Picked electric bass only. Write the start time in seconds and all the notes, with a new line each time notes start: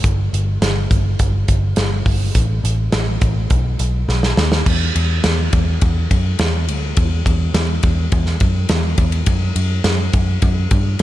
0.04 G1
0.33 G1
0.62 G1
0.91 G1
1.20 G1
1.49 G1
1.77 G1
2.06 G1
2.35 A1
2.64 A1
2.93 A1
3.22 A1
3.51 B1
3.80 B1
4.08 B1
4.37 D#2
4.66 E2
4.96 E2
5.24 E2
5.53 E2
5.82 E2
6.11 F#2
6.40 E2
6.68 D2
6.97 E2
7.26 E2
7.54 E2
7.84 E2
8.12 E2
8.41 F#2
8.70 E2
8.98 E2
9.27 F#2
9.56 F#2
9.84 F#2
10.14 F#2
10.42 F#2
10.71 G2